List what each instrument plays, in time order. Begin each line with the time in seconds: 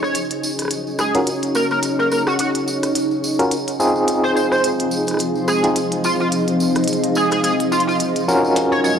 Already playing: analog synth pad C#4 F#4 D#5 F5, ambient pad D#4 G#4
0.03 analog synth lead C#5, cross-stick, tambourine
0.15 closed hi-hat, tambourine
0.25 ambient pad C#5
0.31 closed hi-hat, tambourine
0.43 tambourine
0.59 cross-stick, closed hi-hat, tambourine
0.62 cross-stick
0.65 cross-stick
0.68 cross-stick, closed hi-hat, tambourine
0.87 tambourine
0.99 analog synth lead G#4, cross-stick, tambourine
1.15 tine electric piano C#4 F4 F#4 A#4, closed hi-hat, tambourine
1.27 closed hi-hat, tambourine
1.43 closed hi-hat, tambourine
1.55 analog synth lead A#4, tambourine
1.71 analog synth lead A#4, tambourine
1.83 closed hi-hat, tambourine
1.99 analog synth lead A#4, tambourine
2.11 analog synth lead A#4, tambourine
2.27 analog synth lead F#4, cross-stick, tambourine
2.39 analog synth lead F#4, closed hi-hat, tambourine
2.55 closed hi-hat, tambourine
2.68 tambourine
2.83 cross-stick, closed hi-hat, tambourine
2.95 closed hi-hat, tambourine
3.11 tambourine
3.24 tambourine
3.39 tine electric piano C#4 F4 F#4 A#4, closed hi-hat, tambourine
3.51 closed hi-hat, tambourine
3.68 closed hi-hat, tambourine
3.80 tine electric piano C4 D#4 F4 G#4, tambourine
3.96 tambourine
4.07 ambient pad F3, analog synth pad C4 G#4, closed hi-hat, tambourine
4.23 analog synth lead C5, tambourine
4.34 ambient pad C5, analog synth lead C5, tambourine
4.39 ambient pad D#4
4.51 analog synth lead C5, cross-stick, tambourine
4.64 closed hi-hat, tambourine
4.79 closed hi-hat, tambourine
4.91 tambourine
5.07 cross-stick, closed hi-hat, tambourine
5.11 cross-stick
5.14 cross-stick
5.17 cross-stick, closed hi-hat, tambourine
5.35 tambourine
5.48 analog synth lead G#4, cross-stick, tambourine
5.64 tine electric piano C4 D#4 F4 G#4, closed hi-hat, tambourine
5.76 closed hi-hat, tambourine
5.92 closed hi-hat, tambourine
6.04 analog synth lead F4, tambourine
6.20 analog synth lead F4, tambourine
6.32 closed hi-hat, tambourine
6.48 closed hi-hat, tambourine
6.60 tambourine
6.75 cross-stick, closed hi-hat, tambourine
6.84 closed hi-hat
6.88 closed hi-hat, tambourine
6.93 closed hi-hat
7.04 closed hi-hat, tambourine
7.15 analog synth lead G#4, tambourine
7.31 analog synth lead G#4, cross-stick, closed hi-hat, tambourine
7.43 analog synth lead G#4, closed hi-hat, tambourine
7.60 closed hi-hat, tambourine
7.72 analog synth lead F4, tambourine
7.80 closed hi-hat
7.87 analog synth lead F4, tambourine
8.00 closed hi-hat, tambourine
8.16 closed hi-hat, tambourine
8.28 tine electric piano C#4 F4 F#4 A#4, tambourine
8.45 tambourine
8.56 analog synth pad F#3 C#4, snare, closed hi-hat, tambourine, riser
8.72 analog synth lead C#5, tambourine
8.77 ambient pad G#4
8.84 analog synth lead C#5, tambourine